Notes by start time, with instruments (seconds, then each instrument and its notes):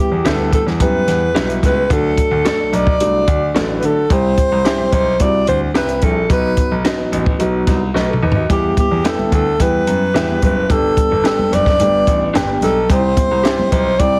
Already playing: upright piano E4 G4, alto saxophone G4
0.12 grand piano E2
0.24 grand piano D2, upright piano F#3 B3 E4 A4, clean electric guitar G4 B4 E5, alto saxophone A4, snare, closed hi-hat
0.31 upright piano G3
0.53 alto saxophone A4, kick, closed hi-hat
0.66 grand piano E2, snare
0.80 grand piano F#2, upright piano G3 B3 E4 G4, alto saxophone B4, kick, closed hi-hat
1.07 grand piano E2, snare, closed hi-hat
1.35 grand piano B1, upright piano G3 B3 E4 F#4, clean electric guitar G4 B4 E5, snare, closed hi-hat
1.50 closed hi-hat
1.63 grand piano C#2, alto saxophone B4, kick, snare, closed hi-hat
1.90 grand piano D2, upright piano F#3 A3 D4 F#4, alto saxophone A4, kick, closed hi-hat
2.17 kick, closed hi-hat
2.31 grand piano D2
2.45 upright piano F#3 A3 D4 F#4, clean electric guitar F#4 A4 D5, alto saxophone A4, snare, closed hi-hat
2.59 grand piano B1
2.73 grand piano B1, alto saxophone D5, closed hi-hat
2.87 kick
3.00 grand piano C2, upright piano F#3 A3 D4 F#4, closed hi-hat
3.28 grand piano D2, kick, closed hi-hat
3.55 grand piano A1, upright piano F#3 A3 D4 F#4, clean electric guitar F#4 A4 D5, snare, closed hi-hat
3.78 alto saxophone B4
3.83 grand piano D3, alto saxophone A4, closed hi-hat
4.10 grand piano C2, upright piano G3 C4 E4 G4, alto saxophone C5, kick, closed hi-hat
4.38 kick, closed hi-hat
4.52 grand piano C2
4.65 upright piano G3 C4 E4 G4, clean electric guitar G4 C5 E5, snare, closed hi-hat
4.79 grand piano B1
4.92 grand piano B1, alto saxophone C5, kick, closed hi-hat
5.20 grand piano C2, upright piano G3 C4 E4 F#4, alto saxophone D5, kick, closed hi-hat
5.47 grand piano D2, alto saxophone C5, closed hi-hat
5.74 grand piano C2, upright piano G3 C4 E4 G4, clean electric guitar G4 C5 E5, alto saxophone B4, snare, closed hi-hat
5.89 closed hi-hat
6.02 grand piano A#1, alto saxophone A4, kick, closed hi-hat
6.29 grand piano B1, upright piano F#3 B3 D#4 F#4, alto saxophone B4, kick, closed hi-hat
6.57 kick, closed hi-hat
6.71 grand piano B1
6.85 upright piano F#3 B3 D#4 F#4, clean electric guitar F#4 B4 D#5, snare, closed hi-hat
6.99 grand piano A1
7.12 grand piano A1, closed hi-hat
7.26 kick
7.39 grand piano B1, upright piano F#3 B3 D#4 F#4, closed hi-hat
7.67 grand piano C2, kick, snare, closed hi-hat
7.94 grand piano B1, upright piano A3 F#4, clean electric guitar F#4 B4 D#5, snare
8.08 upright piano A4
8.13 mid tom
8.22 grand piano D#2, upright piano D#4 B4
8.32 floor tom
8.36 upright piano F#4 D#5
8.49 grand piano E2, upright piano G3 B3 E4 G4, alto saxophone G4, kick, closed hi-hat, muted conga, low conga
8.77 alto saxophone G4, kick, closed hi-hat, muted conga, high conga
8.91 grand piano E2
9.04 upright piano G3 B3 E4 G4, clean electric guitar G4 B4 E5, alto saxophone A4, snare, closed hi-hat, muted conga
9.18 grand piano D2, high conga, low conga
9.32 grand piano D2, alto saxophone A4, kick, closed hi-hat, muted conga
9.59 grand piano E2, upright piano G3 B3 E4 G4, alto saxophone B4, kick, closed hi-hat
9.87 grand piano F#2, closed hi-hat, muted conga
10.14 grand piano E2, upright piano G3 B3 E4 G4, clean electric guitar G4 B4 E5, snare, closed hi-hat
10.30 high conga
10.42 grand piano F#1, alto saxophone B4, kick, closed hi-hat, muted conga, low conga
10.69 grand piano G1, upright piano G3 B3 D4 G4, alto saxophone A4, kick, closed hi-hat, low conga
10.96 kick, closed hi-hat, high conga
11.11 grand piano G1
11.24 upright piano G3 B3 D4 G4, clean electric guitar D4 G4 B4, alto saxophone A4, snare, closed hi-hat
11.39 grand piano F#1, high conga, low conga
11.52 grand piano F#1, alto saxophone D5, closed hi-hat
11.66 kick, snare
11.79 grand piano G1, upright piano G3 A3 D4 G4, closed hi-hat, muted conga
11.86 upright piano B3
12.07 grand piano A1, kick, closed hi-hat
12.34 grand piano G1, upright piano G3 B3 D4 G4, clean electric guitar D4 G4 B4, snare, closed hi-hat
12.49 high conga
12.61 grand piano B1, alto saxophone A4, snare, closed hi-hat, muted conga, low conga
12.89 grand piano C2, upright piano G3 C4 D#4 G4, alto saxophone C5, kick, closed hi-hat, muted conga, low conga
12.96 upright piano E4
13.17 kick, closed hi-hat, muted conga, high conga
13.31 grand piano C2
13.44 upright piano G3 C4 E4 G4, clean electric guitar G4 C5 E5, snare, closed hi-hat
13.59 grand piano B1, high conga, low conga
13.72 grand piano B1, alto saxophone C5, kick, closed hi-hat
13.99 grand piano C2, upright piano G3 C4 E4 G4, alto saxophone D5, kick, closed hi-hat, muted conga